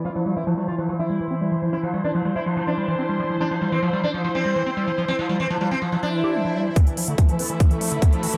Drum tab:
HH |----------------|----------------|----------------|----------------|
BD |----------------|----------------|----------------|----------------|

HH |xxoxxxoxxxoxxxox|
BD |o---o---o---o---|